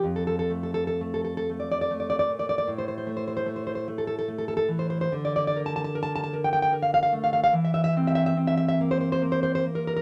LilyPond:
\new Staff \with { instrumentName = "Nylon-string guitar" } { \time 6/8 \key f \major \tempo 4. = 48 << { r32 a'32 a'32 a'32 r32 a'32 a'32 a'32 r32 a'32 a'32 a'32 r32 d''32 d''32 d''32 r32 d''32 d''32 d''32 r32 d''32 d''32 d''32 | r32 c''32 c''32 c''32 r32 c''32 c''32 c''32 r32 c''32 c''32 c''32 r32 a'32 a'32 a'32 r32 a'32 a'32 a'32 r32 c''32 c''32 c''32 | r32 d''32 d''32 d''32 r32 a''32 a''32 a''32 r32 a''32 a''32 a''32 r32 g''32 g''32 g''32 r32 f''32 f''32 f''32 r32 f''32 f''32 f''32 | r32 e''32 e''32 e''32 r32 e''32 e''32 e''32 r32 e''32 e''32 e''32 r32 c''32 c''32 c''32 r32 c''32 c''32 c''32 r32 bes'32 bes'32 bes'32 | } \\ { f,8 a8 a8 a8 a8 bes,8 | a,8 a8 a8 a8 a8 e8 | d8 bes'8 bes'8 bes'8 bes'8 a8 | e8 c'8 c'8 bes8 bes8 bes8 | } >> }